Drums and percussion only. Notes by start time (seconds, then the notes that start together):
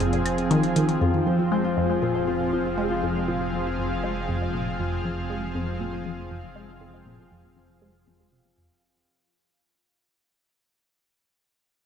0.00 closed hi-hat
0.13 closed hi-hat
0.26 closed hi-hat, claves
0.38 closed hi-hat
0.51 closed hi-hat
0.63 closed hi-hat
0.76 closed hi-hat
0.89 closed hi-hat